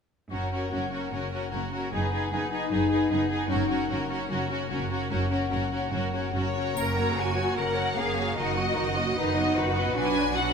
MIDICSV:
0, 0, Header, 1, 8, 480
1, 0, Start_track
1, 0, Key_signature, 6, "major"
1, 0, Tempo, 400267
1, 379, Time_signature, 4, 2, 24, 8
1, 6606, Tempo, 413793
1, 9006, Tempo, 396040
1, 12587, End_track
2, 0, Start_track
2, 0, Title_t, "Violin section"
2, 0, Program_c, 0, 48
2, 392, Note_on_c, 0, 70, 32
2, 629, Note_off_c, 0, 70, 0
2, 641, Note_on_c, 0, 70, 29
2, 862, Note_off_c, 0, 70, 0
2, 876, Note_on_c, 0, 70, 29
2, 1096, Note_off_c, 0, 70, 0
2, 1110, Note_on_c, 0, 70, 28
2, 1343, Note_off_c, 0, 70, 0
2, 1357, Note_on_c, 0, 70, 30
2, 1581, Note_off_c, 0, 70, 0
2, 1595, Note_on_c, 0, 70, 28
2, 1803, Note_off_c, 0, 70, 0
2, 1817, Note_on_c, 0, 70, 30
2, 2060, Note_off_c, 0, 70, 0
2, 2079, Note_on_c, 0, 70, 30
2, 2313, Note_off_c, 0, 70, 0
2, 2313, Note_on_c, 0, 71, 33
2, 2549, Note_off_c, 0, 71, 0
2, 2565, Note_on_c, 0, 71, 31
2, 2769, Note_off_c, 0, 71, 0
2, 2783, Note_on_c, 0, 71, 35
2, 3008, Note_off_c, 0, 71, 0
2, 3022, Note_on_c, 0, 71, 30
2, 3249, Note_off_c, 0, 71, 0
2, 3263, Note_on_c, 0, 71, 33
2, 3486, Note_off_c, 0, 71, 0
2, 3500, Note_on_c, 0, 71, 34
2, 3725, Note_off_c, 0, 71, 0
2, 3742, Note_on_c, 0, 71, 35
2, 3942, Note_off_c, 0, 71, 0
2, 3956, Note_on_c, 0, 71, 35
2, 4192, Note_off_c, 0, 71, 0
2, 4202, Note_on_c, 0, 70, 43
2, 4432, Note_off_c, 0, 70, 0
2, 4447, Note_on_c, 0, 70, 38
2, 4676, Note_off_c, 0, 70, 0
2, 4690, Note_on_c, 0, 70, 39
2, 4912, Note_off_c, 0, 70, 0
2, 4926, Note_on_c, 0, 70, 37
2, 5140, Note_off_c, 0, 70, 0
2, 5154, Note_on_c, 0, 70, 40
2, 5392, Note_off_c, 0, 70, 0
2, 5418, Note_on_c, 0, 70, 36
2, 5633, Note_off_c, 0, 70, 0
2, 5647, Note_on_c, 0, 70, 35
2, 5881, Note_off_c, 0, 70, 0
2, 5905, Note_on_c, 0, 70, 37
2, 6122, Note_off_c, 0, 70, 0
2, 6137, Note_on_c, 0, 70, 42
2, 6352, Note_off_c, 0, 70, 0
2, 6366, Note_on_c, 0, 70, 37
2, 6594, Note_off_c, 0, 70, 0
2, 6608, Note_on_c, 0, 70, 38
2, 6840, Note_off_c, 0, 70, 0
2, 6871, Note_on_c, 0, 70, 35
2, 7092, Note_off_c, 0, 70, 0
2, 7104, Note_on_c, 0, 70, 38
2, 7324, Note_off_c, 0, 70, 0
2, 7338, Note_on_c, 0, 70, 30
2, 7573, Note_off_c, 0, 70, 0
2, 7592, Note_on_c, 0, 73, 47
2, 7601, Note_on_c, 0, 70, 30
2, 7826, Note_off_c, 0, 70, 0
2, 7840, Note_on_c, 0, 70, 39
2, 8042, Note_off_c, 0, 73, 0
2, 8070, Note_off_c, 0, 70, 0
2, 8071, Note_on_c, 0, 82, 55
2, 8542, Note_off_c, 0, 82, 0
2, 8554, Note_on_c, 0, 80, 52
2, 8997, Note_on_c, 0, 78, 52
2, 9015, Note_off_c, 0, 80, 0
2, 9474, Note_off_c, 0, 78, 0
2, 9484, Note_on_c, 0, 77, 48
2, 9974, Note_off_c, 0, 77, 0
2, 9979, Note_on_c, 0, 75, 58
2, 11401, Note_off_c, 0, 75, 0
2, 11440, Note_on_c, 0, 71, 53
2, 11908, Note_off_c, 0, 71, 0
2, 11910, Note_on_c, 0, 80, 70
2, 12366, Note_off_c, 0, 80, 0
2, 12377, Note_on_c, 0, 78, 60
2, 12587, Note_off_c, 0, 78, 0
2, 12587, End_track
3, 0, Start_track
3, 0, Title_t, "Violin section"
3, 0, Program_c, 1, 48
3, 365, Note_on_c, 1, 66, 30
3, 615, Note_off_c, 1, 66, 0
3, 633, Note_on_c, 1, 66, 28
3, 832, Note_off_c, 1, 66, 0
3, 846, Note_on_c, 1, 66, 30
3, 1071, Note_off_c, 1, 66, 0
3, 1085, Note_on_c, 1, 66, 25
3, 1334, Note_off_c, 1, 66, 0
3, 1355, Note_on_c, 1, 66, 30
3, 1574, Note_off_c, 1, 66, 0
3, 1588, Note_on_c, 1, 66, 28
3, 1805, Note_off_c, 1, 66, 0
3, 1819, Note_on_c, 1, 66, 30
3, 2056, Note_off_c, 1, 66, 0
3, 2070, Note_on_c, 1, 66, 31
3, 2305, Note_on_c, 1, 68, 35
3, 2308, Note_off_c, 1, 66, 0
3, 2535, Note_off_c, 1, 68, 0
3, 2550, Note_on_c, 1, 68, 33
3, 2769, Note_off_c, 1, 68, 0
3, 2784, Note_on_c, 1, 68, 33
3, 3007, Note_off_c, 1, 68, 0
3, 3022, Note_on_c, 1, 68, 31
3, 3229, Note_off_c, 1, 68, 0
3, 3243, Note_on_c, 1, 68, 37
3, 3463, Note_off_c, 1, 68, 0
3, 3477, Note_on_c, 1, 68, 34
3, 3700, Note_off_c, 1, 68, 0
3, 3714, Note_on_c, 1, 68, 37
3, 3929, Note_off_c, 1, 68, 0
3, 3944, Note_on_c, 1, 68, 38
3, 4183, Note_on_c, 1, 66, 43
3, 4186, Note_off_c, 1, 68, 0
3, 4408, Note_off_c, 1, 66, 0
3, 4422, Note_on_c, 1, 66, 41
3, 4648, Note_off_c, 1, 66, 0
3, 4662, Note_on_c, 1, 66, 37
3, 4888, Note_off_c, 1, 66, 0
3, 4902, Note_on_c, 1, 66, 36
3, 5138, Note_off_c, 1, 66, 0
3, 5152, Note_on_c, 1, 66, 41
3, 5386, Note_off_c, 1, 66, 0
3, 5400, Note_on_c, 1, 66, 38
3, 5609, Note_off_c, 1, 66, 0
3, 5623, Note_on_c, 1, 66, 38
3, 5862, Note_off_c, 1, 66, 0
3, 5876, Note_on_c, 1, 66, 38
3, 6109, Note_off_c, 1, 66, 0
3, 6123, Note_on_c, 1, 66, 43
3, 6345, Note_off_c, 1, 66, 0
3, 6360, Note_on_c, 1, 66, 37
3, 6579, Note_off_c, 1, 66, 0
3, 6593, Note_on_c, 1, 66, 35
3, 6825, Note_off_c, 1, 66, 0
3, 6839, Note_on_c, 1, 66, 34
3, 7054, Note_off_c, 1, 66, 0
3, 7068, Note_on_c, 1, 66, 38
3, 7313, Note_off_c, 1, 66, 0
3, 7328, Note_on_c, 1, 66, 33
3, 7553, Note_off_c, 1, 66, 0
3, 7567, Note_on_c, 1, 66, 31
3, 7796, Note_off_c, 1, 66, 0
3, 7810, Note_on_c, 1, 66, 32
3, 8055, Note_off_c, 1, 66, 0
3, 8057, Note_on_c, 1, 70, 35
3, 8058, Note_off_c, 1, 70, 0
3, 8058, Note_on_c, 1, 70, 35
3, 8282, Note_off_c, 1, 70, 0
3, 8288, Note_on_c, 1, 66, 31
3, 8290, Note_on_c, 1, 73, 33
3, 8526, Note_on_c, 1, 70, 33
3, 8532, Note_off_c, 1, 66, 0
3, 8533, Note_off_c, 1, 73, 0
3, 8534, Note_off_c, 1, 70, 0
3, 8534, Note_on_c, 1, 70, 32
3, 8750, Note_on_c, 1, 66, 28
3, 8756, Note_on_c, 1, 73, 31
3, 8772, Note_off_c, 1, 70, 0
3, 8987, Note_on_c, 1, 70, 32
3, 8993, Note_off_c, 1, 70, 0
3, 8993, Note_on_c, 1, 70, 34
3, 8995, Note_off_c, 1, 66, 0
3, 8998, Note_off_c, 1, 73, 0
3, 9220, Note_on_c, 1, 73, 33
3, 9224, Note_off_c, 1, 70, 0
3, 9225, Note_on_c, 1, 66, 31
3, 9475, Note_off_c, 1, 73, 0
3, 9475, Note_on_c, 1, 70, 33
3, 9476, Note_off_c, 1, 70, 0
3, 9476, Note_on_c, 1, 70, 33
3, 9478, Note_off_c, 1, 66, 0
3, 9722, Note_on_c, 1, 73, 31
3, 9726, Note_off_c, 1, 70, 0
3, 9728, Note_on_c, 1, 66, 33
3, 9957, Note_on_c, 1, 63, 36
3, 9958, Note_on_c, 1, 70, 38
3, 9972, Note_off_c, 1, 73, 0
3, 9975, Note_off_c, 1, 66, 0
3, 10192, Note_off_c, 1, 63, 0
3, 10192, Note_off_c, 1, 70, 0
3, 10194, Note_on_c, 1, 66, 35
3, 10195, Note_on_c, 1, 75, 34
3, 10432, Note_on_c, 1, 63, 33
3, 10432, Note_on_c, 1, 70, 34
3, 10449, Note_off_c, 1, 66, 0
3, 10449, Note_off_c, 1, 75, 0
3, 10672, Note_on_c, 1, 66, 31
3, 10684, Note_on_c, 1, 75, 32
3, 10689, Note_off_c, 1, 63, 0
3, 10689, Note_off_c, 1, 70, 0
3, 10930, Note_on_c, 1, 71, 39
3, 10931, Note_off_c, 1, 66, 0
3, 10933, Note_on_c, 1, 63, 39
3, 10937, Note_off_c, 1, 75, 0
3, 11163, Note_off_c, 1, 71, 0
3, 11165, Note_off_c, 1, 63, 0
3, 11167, Note_on_c, 1, 75, 36
3, 11173, Note_on_c, 1, 66, 36
3, 11406, Note_on_c, 1, 63, 39
3, 11406, Note_on_c, 1, 71, 38
3, 11418, Note_off_c, 1, 75, 0
3, 11421, Note_off_c, 1, 66, 0
3, 11636, Note_on_c, 1, 75, 38
3, 11639, Note_on_c, 1, 66, 40
3, 11655, Note_off_c, 1, 63, 0
3, 11655, Note_off_c, 1, 71, 0
3, 11873, Note_off_c, 1, 66, 0
3, 11879, Note_on_c, 1, 71, 47
3, 11887, Note_off_c, 1, 75, 0
3, 11887, Note_on_c, 1, 66, 44
3, 12326, Note_off_c, 1, 71, 0
3, 12330, Note_off_c, 1, 66, 0
3, 12364, Note_on_c, 1, 66, 46
3, 12370, Note_on_c, 1, 71, 47
3, 12587, Note_off_c, 1, 66, 0
3, 12587, Note_off_c, 1, 71, 0
3, 12587, End_track
4, 0, Start_track
4, 0, Title_t, "Viola section"
4, 0, Program_c, 2, 48
4, 370, Note_on_c, 2, 61, 30
4, 608, Note_off_c, 2, 61, 0
4, 622, Note_on_c, 2, 61, 28
4, 848, Note_off_c, 2, 61, 0
4, 862, Note_on_c, 2, 61, 28
4, 1091, Note_off_c, 2, 61, 0
4, 1105, Note_on_c, 2, 61, 30
4, 1333, Note_off_c, 2, 61, 0
4, 1347, Note_on_c, 2, 61, 29
4, 1576, Note_off_c, 2, 61, 0
4, 1590, Note_on_c, 2, 61, 28
4, 1811, Note_off_c, 2, 61, 0
4, 1826, Note_on_c, 2, 61, 28
4, 2056, Note_off_c, 2, 61, 0
4, 2070, Note_on_c, 2, 61, 28
4, 2308, Note_off_c, 2, 61, 0
4, 2313, Note_on_c, 2, 63, 34
4, 2545, Note_off_c, 2, 63, 0
4, 2559, Note_on_c, 2, 63, 30
4, 2773, Note_off_c, 2, 63, 0
4, 2788, Note_on_c, 2, 63, 31
4, 3008, Note_off_c, 2, 63, 0
4, 3022, Note_on_c, 2, 63, 35
4, 3241, Note_off_c, 2, 63, 0
4, 3255, Note_on_c, 2, 63, 33
4, 3481, Note_off_c, 2, 63, 0
4, 3496, Note_on_c, 2, 63, 34
4, 3719, Note_off_c, 2, 63, 0
4, 3734, Note_on_c, 2, 63, 32
4, 3953, Note_off_c, 2, 63, 0
4, 3967, Note_on_c, 2, 63, 34
4, 4198, Note_off_c, 2, 63, 0
4, 4202, Note_on_c, 2, 61, 41
4, 4423, Note_off_c, 2, 61, 0
4, 4437, Note_on_c, 2, 61, 35
4, 4666, Note_off_c, 2, 61, 0
4, 4680, Note_on_c, 2, 61, 38
4, 4906, Note_off_c, 2, 61, 0
4, 4921, Note_on_c, 2, 61, 39
4, 5146, Note_off_c, 2, 61, 0
4, 5161, Note_on_c, 2, 61, 39
4, 5391, Note_off_c, 2, 61, 0
4, 5406, Note_on_c, 2, 61, 34
4, 5620, Note_off_c, 2, 61, 0
4, 5634, Note_on_c, 2, 61, 37
4, 5867, Note_off_c, 2, 61, 0
4, 5881, Note_on_c, 2, 61, 36
4, 6103, Note_off_c, 2, 61, 0
4, 6117, Note_on_c, 2, 61, 41
4, 6351, Note_off_c, 2, 61, 0
4, 6365, Note_on_c, 2, 61, 34
4, 6592, Note_off_c, 2, 61, 0
4, 6606, Note_on_c, 2, 61, 37
4, 6834, Note_off_c, 2, 61, 0
4, 6848, Note_on_c, 2, 61, 37
4, 7077, Note_off_c, 2, 61, 0
4, 7091, Note_on_c, 2, 61, 35
4, 7317, Note_off_c, 2, 61, 0
4, 7330, Note_on_c, 2, 61, 31
4, 7551, Note_off_c, 2, 61, 0
4, 7565, Note_on_c, 2, 61, 29
4, 7810, Note_off_c, 2, 61, 0
4, 7823, Note_on_c, 2, 61, 29
4, 8050, Note_off_c, 2, 61, 0
4, 8063, Note_on_c, 2, 58, 34
4, 8064, Note_on_c, 2, 61, 36
4, 8284, Note_off_c, 2, 58, 0
4, 8285, Note_off_c, 2, 61, 0
4, 8300, Note_on_c, 2, 54, 30
4, 8301, Note_on_c, 2, 58, 30
4, 8516, Note_off_c, 2, 58, 0
4, 8530, Note_on_c, 2, 58, 33
4, 8530, Note_on_c, 2, 61, 30
4, 8538, Note_off_c, 2, 54, 0
4, 8758, Note_off_c, 2, 58, 0
4, 8770, Note_off_c, 2, 61, 0
4, 8772, Note_on_c, 2, 54, 33
4, 8772, Note_on_c, 2, 58, 32
4, 8997, Note_off_c, 2, 58, 0
4, 9006, Note_off_c, 2, 54, 0
4, 9009, Note_on_c, 2, 61, 32
4, 9011, Note_on_c, 2, 58, 32
4, 9232, Note_off_c, 2, 61, 0
4, 9234, Note_off_c, 2, 58, 0
4, 9250, Note_on_c, 2, 58, 31
4, 9252, Note_on_c, 2, 54, 29
4, 9477, Note_off_c, 2, 58, 0
4, 9488, Note_on_c, 2, 61, 30
4, 9491, Note_on_c, 2, 58, 31
4, 9492, Note_off_c, 2, 54, 0
4, 9712, Note_off_c, 2, 58, 0
4, 9726, Note_on_c, 2, 58, 31
4, 9728, Note_on_c, 2, 54, 32
4, 9732, Note_off_c, 2, 61, 0
4, 9965, Note_on_c, 2, 51, 34
4, 9968, Note_on_c, 2, 63, 36
4, 9974, Note_off_c, 2, 58, 0
4, 9975, Note_off_c, 2, 54, 0
4, 10196, Note_off_c, 2, 51, 0
4, 10197, Note_off_c, 2, 63, 0
4, 10217, Note_on_c, 2, 54, 32
4, 10217, Note_on_c, 2, 58, 32
4, 10456, Note_on_c, 2, 63, 35
4, 10458, Note_on_c, 2, 51, 34
4, 10460, Note_off_c, 2, 54, 0
4, 10460, Note_off_c, 2, 58, 0
4, 10701, Note_off_c, 2, 63, 0
4, 10702, Note_off_c, 2, 51, 0
4, 10703, Note_on_c, 2, 58, 38
4, 10705, Note_on_c, 2, 54, 35
4, 10939, Note_on_c, 2, 63, 34
4, 10943, Note_on_c, 2, 51, 36
4, 10946, Note_off_c, 2, 58, 0
4, 10948, Note_off_c, 2, 54, 0
4, 11168, Note_off_c, 2, 63, 0
4, 11170, Note_off_c, 2, 51, 0
4, 11182, Note_on_c, 2, 59, 34
4, 11188, Note_on_c, 2, 54, 33
4, 11422, Note_on_c, 2, 51, 37
4, 11424, Note_on_c, 2, 63, 33
4, 11426, Note_off_c, 2, 59, 0
4, 11428, Note_off_c, 2, 54, 0
4, 11663, Note_off_c, 2, 51, 0
4, 11664, Note_off_c, 2, 63, 0
4, 11673, Note_on_c, 2, 59, 34
4, 11675, Note_on_c, 2, 54, 34
4, 11897, Note_off_c, 2, 54, 0
4, 11906, Note_off_c, 2, 59, 0
4, 11910, Note_on_c, 2, 62, 46
4, 11912, Note_on_c, 2, 54, 46
4, 12343, Note_off_c, 2, 62, 0
4, 12344, Note_off_c, 2, 54, 0
4, 12379, Note_on_c, 2, 62, 48
4, 12383, Note_on_c, 2, 54, 46
4, 12587, Note_off_c, 2, 54, 0
4, 12587, Note_off_c, 2, 62, 0
4, 12587, End_track
5, 0, Start_track
5, 0, Title_t, "Harp"
5, 0, Program_c, 3, 46
5, 385, Note_on_c, 3, 42, 30
5, 626, Note_on_c, 3, 66, 26
5, 875, Note_on_c, 3, 58, 26
5, 1111, Note_on_c, 3, 61, 25
5, 1353, Note_on_c, 3, 49, 27
5, 1572, Note_off_c, 3, 66, 0
5, 1586, Note_on_c, 3, 66, 26
5, 1820, Note_off_c, 3, 58, 0
5, 1834, Note_on_c, 3, 58, 29
5, 2046, Note_off_c, 3, 61, 0
5, 2060, Note_on_c, 3, 61, 28
5, 2294, Note_off_c, 3, 42, 0
5, 2309, Note_on_c, 3, 42, 35
5, 2327, Note_off_c, 3, 61, 0
5, 2334, Note_off_c, 3, 49, 0
5, 2335, Note_off_c, 3, 58, 0
5, 2546, Note_on_c, 3, 68, 28
5, 2781, Note_on_c, 3, 59, 30
5, 3022, Note_on_c, 3, 63, 29
5, 3245, Note_off_c, 3, 42, 0
5, 3259, Note_on_c, 3, 42, 33
5, 3474, Note_off_c, 3, 68, 0
5, 3489, Note_on_c, 3, 68, 28
5, 3707, Note_off_c, 3, 59, 0
5, 3721, Note_on_c, 3, 59, 32
5, 3955, Note_off_c, 3, 63, 0
5, 3969, Note_on_c, 3, 63, 32
5, 4187, Note_off_c, 3, 42, 0
5, 4202, Note_on_c, 3, 42, 39
5, 4217, Note_off_c, 3, 59, 0
5, 4217, Note_off_c, 3, 68, 0
5, 4223, Note_off_c, 3, 63, 0
5, 4418, Note_off_c, 3, 66, 0
5, 4433, Note_on_c, 3, 66, 36
5, 4680, Note_on_c, 3, 58, 37
5, 4929, Note_on_c, 3, 61, 34
5, 5165, Note_on_c, 3, 49, 34
5, 5394, Note_off_c, 3, 66, 0
5, 5409, Note_on_c, 3, 66, 35
5, 5630, Note_off_c, 3, 58, 0
5, 5645, Note_on_c, 3, 58, 34
5, 5870, Note_off_c, 3, 61, 0
5, 5884, Note_on_c, 3, 61, 31
5, 6102, Note_off_c, 3, 42, 0
5, 6117, Note_on_c, 3, 42, 39
5, 6351, Note_off_c, 3, 66, 0
5, 6366, Note_on_c, 3, 66, 34
5, 6595, Note_off_c, 3, 58, 0
5, 6609, Note_on_c, 3, 58, 32
5, 6834, Note_off_c, 3, 61, 0
5, 6847, Note_on_c, 3, 61, 33
5, 7071, Note_off_c, 3, 49, 0
5, 7085, Note_on_c, 3, 49, 33
5, 7320, Note_off_c, 3, 66, 0
5, 7334, Note_on_c, 3, 66, 30
5, 7565, Note_off_c, 3, 58, 0
5, 7579, Note_on_c, 3, 58, 28
5, 7817, Note_off_c, 3, 61, 0
5, 7831, Note_on_c, 3, 61, 27
5, 8065, Note_off_c, 3, 42, 0
5, 8079, Note_on_c, 3, 42, 34
5, 8086, Note_off_c, 3, 49, 0
5, 8298, Note_off_c, 3, 58, 0
5, 8312, Note_on_c, 3, 58, 30
5, 8524, Note_off_c, 3, 66, 0
5, 8538, Note_on_c, 3, 66, 31
5, 8775, Note_on_c, 3, 70, 31
5, 9010, Note_on_c, 3, 49, 29
5, 9237, Note_off_c, 3, 58, 0
5, 9488, Note_off_c, 3, 66, 0
5, 9503, Note_on_c, 3, 66, 31
5, 9723, Note_off_c, 3, 70, 0
5, 9738, Note_on_c, 3, 70, 30
5, 9967, Note_off_c, 3, 42, 0
5, 9982, Note_on_c, 3, 42, 37
5, 9997, Note_off_c, 3, 49, 0
5, 10001, Note_off_c, 3, 61, 0
5, 10226, Note_on_c, 3, 58, 33
5, 10449, Note_off_c, 3, 66, 0
5, 10464, Note_on_c, 3, 66, 35
5, 10691, Note_off_c, 3, 70, 0
5, 10706, Note_on_c, 3, 70, 31
5, 10935, Note_off_c, 3, 42, 0
5, 10950, Note_on_c, 3, 42, 42
5, 10967, Note_off_c, 3, 70, 0
5, 10970, Note_off_c, 3, 58, 0
5, 11186, Note_on_c, 3, 59, 34
5, 11403, Note_off_c, 3, 66, 0
5, 11418, Note_on_c, 3, 66, 34
5, 11662, Note_on_c, 3, 71, 37
5, 11899, Note_on_c, 3, 47, 43
5, 11922, Note_off_c, 3, 42, 0
5, 12112, Note_off_c, 3, 59, 0
5, 12127, Note_on_c, 3, 59, 37
5, 12352, Note_off_c, 3, 66, 0
5, 12366, Note_on_c, 3, 66, 38
5, 12587, Note_off_c, 3, 47, 0
5, 12587, Note_off_c, 3, 59, 0
5, 12587, Note_off_c, 3, 66, 0
5, 12587, Note_off_c, 3, 71, 0
5, 12587, End_track
6, 0, Start_track
6, 0, Title_t, "Cello section"
6, 0, Program_c, 4, 48
6, 370, Note_on_c, 4, 42, 35
6, 788, Note_off_c, 4, 42, 0
6, 863, Note_on_c, 4, 42, 38
6, 1270, Note_off_c, 4, 42, 0
6, 1344, Note_on_c, 4, 42, 38
6, 1750, Note_off_c, 4, 42, 0
6, 1823, Note_on_c, 4, 42, 37
6, 2231, Note_off_c, 4, 42, 0
6, 2311, Note_on_c, 4, 42, 38
6, 2712, Note_off_c, 4, 42, 0
6, 2797, Note_on_c, 4, 42, 40
6, 3188, Note_off_c, 4, 42, 0
6, 3255, Note_on_c, 4, 42, 45
6, 3647, Note_off_c, 4, 42, 0
6, 3728, Note_on_c, 4, 42, 45
6, 4124, Note_off_c, 4, 42, 0
6, 4201, Note_on_c, 4, 42, 49
6, 4602, Note_off_c, 4, 42, 0
6, 4681, Note_on_c, 4, 42, 48
6, 5084, Note_off_c, 4, 42, 0
6, 5162, Note_on_c, 4, 42, 48
6, 5562, Note_off_c, 4, 42, 0
6, 5651, Note_on_c, 4, 42, 49
6, 6051, Note_off_c, 4, 42, 0
6, 6132, Note_on_c, 4, 42, 45
6, 6533, Note_off_c, 4, 42, 0
6, 6618, Note_on_c, 4, 42, 44
6, 7010, Note_off_c, 4, 42, 0
6, 7092, Note_on_c, 4, 42, 46
6, 7496, Note_off_c, 4, 42, 0
6, 7573, Note_on_c, 4, 42, 41
6, 7988, Note_off_c, 4, 42, 0
6, 8068, Note_on_c, 4, 70, 41
6, 8508, Note_off_c, 4, 70, 0
6, 8536, Note_on_c, 4, 66, 40
6, 9001, Note_on_c, 4, 70, 42
6, 9006, Note_off_c, 4, 66, 0
6, 9486, Note_off_c, 4, 70, 0
6, 9486, Note_on_c, 4, 68, 38
6, 9965, Note_off_c, 4, 68, 0
6, 9984, Note_on_c, 4, 66, 40
6, 10931, Note_off_c, 4, 66, 0
6, 10955, Note_on_c, 4, 63, 42
6, 11423, Note_off_c, 4, 63, 0
6, 11425, Note_on_c, 4, 66, 44
6, 11900, Note_off_c, 4, 66, 0
6, 11910, Note_on_c, 4, 62, 42
6, 12375, Note_off_c, 4, 62, 0
6, 12387, Note_on_c, 4, 66, 46
6, 12587, Note_off_c, 4, 66, 0
6, 12587, End_track
7, 0, Start_track
7, 0, Title_t, "Double bass section"
7, 0, Program_c, 5, 48
7, 378, Note_on_c, 5, 30, 38
7, 792, Note_off_c, 5, 30, 0
7, 875, Note_on_c, 5, 30, 37
7, 1277, Note_off_c, 5, 30, 0
7, 1351, Note_on_c, 5, 30, 34
7, 1753, Note_off_c, 5, 30, 0
7, 1827, Note_on_c, 5, 30, 38
7, 2233, Note_off_c, 5, 30, 0
7, 2309, Note_on_c, 5, 30, 42
7, 2712, Note_off_c, 5, 30, 0
7, 2793, Note_on_c, 5, 30, 42
7, 3186, Note_off_c, 5, 30, 0
7, 3266, Note_on_c, 5, 30, 42
7, 3653, Note_off_c, 5, 30, 0
7, 3726, Note_on_c, 5, 30, 46
7, 4122, Note_off_c, 5, 30, 0
7, 4202, Note_on_c, 5, 30, 54
7, 4603, Note_off_c, 5, 30, 0
7, 4693, Note_on_c, 5, 30, 46
7, 5091, Note_off_c, 5, 30, 0
7, 5177, Note_on_c, 5, 30, 46
7, 5570, Note_off_c, 5, 30, 0
7, 5652, Note_on_c, 5, 30, 47
7, 6051, Note_off_c, 5, 30, 0
7, 6127, Note_on_c, 5, 30, 51
7, 6530, Note_off_c, 5, 30, 0
7, 6614, Note_on_c, 5, 30, 46
7, 7008, Note_off_c, 5, 30, 0
7, 7090, Note_on_c, 5, 30, 41
7, 7495, Note_off_c, 5, 30, 0
7, 7572, Note_on_c, 5, 30, 39
7, 7987, Note_off_c, 5, 30, 0
7, 8072, Note_on_c, 5, 30, 41
7, 8487, Note_off_c, 5, 30, 0
7, 8541, Note_on_c, 5, 30, 38
7, 8953, Note_off_c, 5, 30, 0
7, 9019, Note_on_c, 5, 30, 37
7, 9438, Note_off_c, 5, 30, 0
7, 9495, Note_on_c, 5, 30, 38
7, 9922, Note_off_c, 5, 30, 0
7, 9988, Note_on_c, 5, 30, 43
7, 10410, Note_off_c, 5, 30, 0
7, 10467, Note_on_c, 5, 30, 40
7, 10892, Note_off_c, 5, 30, 0
7, 10958, Note_on_c, 5, 30, 39
7, 11378, Note_off_c, 5, 30, 0
7, 11433, Note_on_c, 5, 30, 44
7, 11849, Note_off_c, 5, 30, 0
7, 11915, Note_on_c, 5, 35, 46
7, 12587, Note_off_c, 5, 35, 0
7, 12587, End_track
8, 0, Start_track
8, 0, Title_t, "Drums"
8, 8068, Note_on_c, 9, 81, 27
8, 8184, Note_off_c, 9, 81, 0
8, 12587, End_track
0, 0, End_of_file